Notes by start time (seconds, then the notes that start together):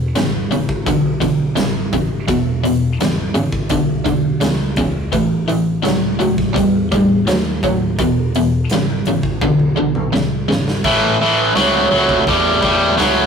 Already playing: E1 E2 B2
0.15 G#1 E2 C#3, snare, closed hi-hat
0.51 G#1 E2 C#3, closed hi-hat
0.69 kick
0.86 B1 E2 D3, kick, closed hi-hat
1.20 B1 E2 D3, kick, closed hi-hat
1.56 G#1 E2 C#3, snare, closed hi-hat
1.93 E2 C#3, kick, closed hi-hat
2.28 E1 E2 B2, kick, closed hi-hat
2.64 E2 B2, closed hi-hat
2.99 G#1 E2 C#3, snare, closed hi-hat
3.34 G#1 E2 C#3, closed hi-hat
3.52 kick
3.69 B1 E2 D3, kick, closed hi-hat
4.05 B1 E2 D3, kick, closed hi-hat
4.41 C#2 E2 C#3, snare, closed hi-hat
4.76 C#2 E2 C#3, kick, closed hi-hat
5.12 A1 A2 E3, kick, closed hi-hat
5.48 A1 A2 E3, closed hi-hat
5.82 C#2 A2 F#3, closed hi-hat
5.87 snare
6.19 C#2 A2 F#3, closed hi-hat
6.38 kick, snare
6.54 E2 A2 G3, kick, closed hi-hat
6.92 E2 A2 G3, kick, closed hi-hat
7.26 D#2 A2 F#3, snare, closed hi-hat
7.63 A2 F#3, kick, closed hi-hat
7.98 E1 E2 B2, kick, closed hi-hat
8.35 E2 B2, closed hi-hat
8.69 G#1 E2 C#3, snare, closed hi-hat
9.05 G#1 E2 C#3, closed hi-hat
9.23 kick
9.41 B1 E2 D3, kick, high tom
9.59 high tom
9.76 B1 E2 D3
9.95 mid tom
10.13 C#2 E2 C#3, snare
10.48 G#1 E2 C#3, snare
10.68 snare
10.84 A1 A2 E3, kick, crash
11.20 A1 A2 E3
11.55 C#2 A2 F#3, snare, open hi-hat
11.90 C#2 A2 F#3
12.09 kick
12.27 E2 A2 G3, kick, open hi-hat
12.62 E2 A2 G3, kick
12.97 C#2 A2 F#3, snare, open hi-hat